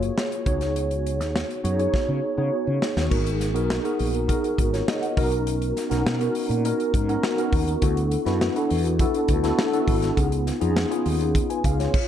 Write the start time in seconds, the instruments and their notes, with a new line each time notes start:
Already playing: tine electric piano A#3 F4 F#4 G#4 C#5
0.02 closed hi-hat
0.18 snare
0.32 closed hi-hat
0.46 fretless electric bass C#2, tine electric piano B3 D#4 F#4 G#4 C#5, kick, closed hi-hat
0.61 snare, closed hi-hat
0.76 closed hi-hat
0.91 closed hi-hat
1.06 closed hi-hat
1.20 fretless electric bass D#2, snare, closed hi-hat
1.36 snare
1.51 closed hi-hat
1.64 fretless electric bass F#2, tine electric piano B3 D#4 F#4 G#4 C#5, closed hi-hat
1.78 tine electric piano B3 D#4 F#4 G#4 C#5, closed hi-hat
1.94 kick, snare
2.08 fretless electric bass C#3
2.37 fretless electric bass C#3, tine electric piano B3 D#4 F#4 G#4 C#5
2.67 fretless electric bass C#3
2.82 snare
2.96 fretless electric bass D#2, snare
3.10 fretless electric bass G#1, tine electric piano B3 D#4 F#4 G#4 A#4, kick, crash
3.26 closed hi-hat
3.41 snare, closed hi-hat
3.54 fretless electric bass B1, tine electric piano B3 D#4 F#4 G#4 A#4, closed hi-hat
3.70 snare
3.84 tine electric piano B3 D#4 F#4 G#4 A#4, closed hi-hat
3.99 fretless electric bass A#1, open hi-hat
4.14 closed hi-hat
4.28 tine electric piano B3 D#4 F#4 G#4 A#4, kick, closed hi-hat
4.44 closed hi-hat
4.58 fretless electric bass G#1, kick, closed hi-hat
4.73 tine electric piano F4 C#5, snare, closed hi-hat
4.88 tine electric piano F#4 D#5, snare
5.02 tine electric piano A#4 F#5, closed hi-hat
5.16 fretless electric bass B1, tine electric piano B3 C#4 D#4 F#4 A#4, kick, open hi-hat
5.32 closed hi-hat
5.47 closed hi-hat
5.62 closed hi-hat
5.77 snare, closed hi-hat
5.90 fretless electric bass B1, tine electric piano B3 C#4 D#4 F#4 A#4, snare, closed hi-hat
6.06 fretless electric bass B2, snare
6.19 tine electric piano B3 C#4 D#4 F#4 A#4, closed hi-hat
6.35 open hi-hat
6.49 fretless electric bass A#2, closed hi-hat
6.64 tine electric piano B3 C#4 D#4 F#4 A#4, closed hi-hat
6.80 closed hi-hat
6.94 fretless electric bass G#2, kick, closed hi-hat
7.08 tine electric piano B3 C#4 D#4 F#4 A#4, closed hi-hat
7.23 snare
7.38 tine electric piano B3 C#4 D#4 F#4 A#4, closed hi-hat
7.52 fretless electric bass D#2, kick, open hi-hat
7.68 closed hi-hat
7.82 fretless electric bass D2, tine electric piano B3 D4 E4 F#4 A4, kick, closed hi-hat
7.97 closed hi-hat
8.11 closed hi-hat
8.26 fretless electric bass F#2, tine electric piano B3 D4 E4 F#4 B4, snare, closed hi-hat
8.41 snare
8.56 tine electric piano B3 D4 E4 F#4 A4, closed hi-hat
8.70 fretless electric bass E2, open hi-hat
8.85 closed hi-hat
8.99 tine electric piano B3 D4 E4 F#4 A4, kick, closed hi-hat
9.14 closed hi-hat
9.28 fretless electric bass D2, kick, closed hi-hat
9.43 tine electric piano B3 D4 E4 F#4 A4, snare, closed hi-hat
9.59 snare
9.72 tine electric piano B3 D4 E4 F#4 A4, closed hi-hat
9.88 fretless electric bass G#1, kick, open hi-hat
10.02 snare, closed hi-hat
10.16 fretless electric bass C#2, tine electric piano B3 C#4 D#4 F4 G#4, kick, closed hi-hat
10.32 closed hi-hat
10.47 snare, closed hi-hat
10.61 fretless electric bass F2, tine electric piano B3 C#4 D#4 F4 G#4, closed hi-hat
10.76 snare
10.90 tine electric piano B3 C#4 D#4 F4 G#4, closed hi-hat
11.06 fretless electric bass D#2, open hi-hat
11.21 closed hi-hat
11.35 kick, closed hi-hat
11.50 tine electric piano B4 G#5, closed hi-hat
11.64 fretless electric bass C#2, tine electric piano G#4 F5, kick, closed hi-hat
11.80 tine electric piano F4 C#5, snare, closed hi-hat
11.94 kick, crash